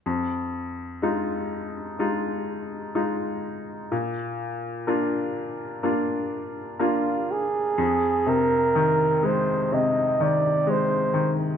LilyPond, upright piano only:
\new Staff \with { instrumentName = "Upright piano" } { \time 4/4 \key f \dorian \tempo 4 = 62 f,4 <aes ees' f'>4 <aes ees' f'>4 <aes ees' f'>4 | bes,4 <bes d' f'>4 <bes d' f'>4 <bes d' f'>4 | f,8 c8 ees8 aes8 c8 ees8 aes8 ees8 | }